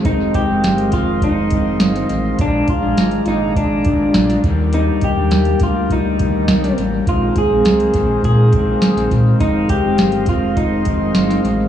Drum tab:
HH |x-x-xxx-x-x-xxx-|x-x-xxx-x-x-xxx-|x-x-xxx-x-x-xxx-|x-x-xxx-x-x-xxx-|
SD |----o-------oo--|----o-------oo--|----o-------oo--|----o-------oo--|
BD |o-o---o-o-o-----|o-o-----o-o---o-|--o---o-o-o-----|o-o---o-o-o---o-|

HH |x-x-xxx-x-x-xxx-|
SD |----o-------oo--|
BD |o-o---o-o-o-----|